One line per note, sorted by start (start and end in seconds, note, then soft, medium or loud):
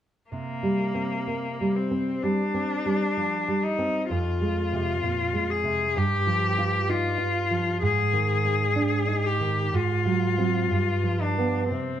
0.31 2.19 C3 soft
0.31 1.77 A#3 soft
0.63 1.15 G3 soft
0.95 1.47 C4 soft
1.27 1.60 A#3 soft
1.61 2.11 G3 soft
1.76 2.24 C4 soft
1.91 2.42 C4 soft
2.22 2.73 G3 soft
2.22 3.65 D4 medium
2.54 3.04 C4 soft
2.86 3.36 G3 soft
3.17 3.48 F3 soft
3.48 3.98 G3 soft
3.63 4.10 D#4 medium
3.79 4.10 C4 soft
4.10 5.93 F2 soft
4.10 5.51 F4 medium
4.41 4.91 G#3 soft
4.73 5.02 C3 soft
5.03 5.34 A#2 soft
5.33 5.84 G#3 soft
5.50 5.98 G#4 medium
5.64 5.96 C3 soft
5.96 7.79 G2 soft
5.96 6.91 G4 medium
6.27 6.77 F3 soft
6.58 7.08 F4 soft
6.89 7.20 D#4 soft
6.89 7.82 F4 medium
7.18 7.69 F4 soft
7.51 7.83 F3 soft
7.82 9.70 G#2 soft
7.82 9.27 G#4 medium
8.13 8.65 D#3 soft
8.45 8.75 D#4 soft
8.76 9.08 D4 soft
9.08 9.60 D#4 soft
9.26 9.76 G4 medium
9.41 9.73 D#3 soft
9.74 10.67 G#2 soft
9.74 11.23 F4 medium
10.06 10.37 F#3 soft
10.38 10.67 F#3 soft
10.38 10.67 C4 soft
10.71 11.68 G2 soft
11.04 11.37 F3 soft
11.21 11.70 D4 medium
11.38 11.68 F3 soft
11.38 11.68 B3 soft
11.70 12.00 C3 soft
11.70 12.00 C4 soft